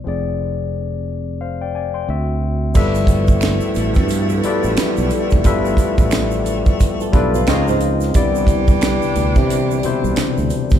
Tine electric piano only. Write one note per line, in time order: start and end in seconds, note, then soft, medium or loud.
0.04 2.03 F3 medium
0.04 2.04 C4 medium
0.04 2.05 G#4 medium
0.08 1.39 D5 medium
1.41 1.60 C5 soft
1.41 1.60 F5 medium
1.61 1.74 D5 soft
1.61 1.74 G5 medium
1.75 1.94 D5 soft
1.75 1.94 G#5 medium
1.94 2.27 G5 soft
1.94 2.26 C6 medium
2.08 2.75 D3 medium
2.08 2.75 C4 medium
2.08 2.76 F#4 medium
2.08 2.76 E5 medium
2.74 3.82 G3 medium
2.74 3.83 F4 medium
2.74 3.83 A4 medium
2.74 3.83 B4 medium
2.74 3.83 E5 medium
4.44 5.26 G3 medium
4.44 5.27 F4 medium
4.44 5.27 A4 medium
4.44 5.27 B4 medium
4.44 5.27 D5 medium
5.44 6.52 G3 medium
5.44 6.52 F4 medium
5.44 6.53 A4 medium
5.44 6.53 B4 medium
5.44 6.53 E5 medium
7.12 7.47 G3 medium
7.12 7.47 F4 medium
7.12 7.47 A4 medium
7.12 7.48 B4 medium
7.12 7.48 D5 medium
7.46 8.04 C#3 loud
7.46 8.04 C4 medium
7.46 8.04 F4 medium
7.46 8.05 D#5 medium
8.15 9.22 C3 medium
8.15 9.22 B3 medium
8.15 9.23 E4 medium
8.15 9.23 D5 medium
9.83 10.66 B2 medium
9.83 10.66 C3 medium
9.83 10.66 E4 medium
9.83 10.67 C5 medium